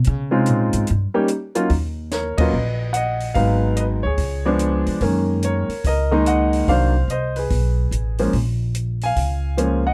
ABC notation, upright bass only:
X:1
M:4/4
L:1/8
Q:"Swing" 1/4=145
K:D#phr
V:1 name="Upright bass" clef=bass
C, ^B,, A,, G,, =G,, z3 | [K:Ebm] E,,3 z B,,,4 | A,,,3 =D,, _D,,3 D, | G,,3 z D,,4 |
=C,,2 C,,2 =B,,,2 =A,,,2 | B,,,4 D,,4 |]